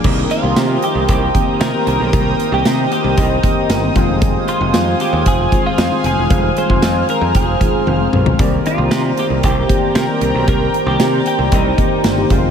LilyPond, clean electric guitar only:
\new Staff \with { instrumentName = "Clean electric guitar" } { \time 4/4 \key c \minor \tempo 4 = 115 r8 f'4 g'8 g'4 bes'8 bes'8~ | bes'8. g'8. g'8 ees'4. r8 | r8 f'4 g'8 aes'8. f'8. aes'8~ | aes'8 c''4 bes'8 aes'4 r4 |
r8 f'4 g'8 g'4 bes'4 | bes'8. g'8. g'8 ees'4. r8 | }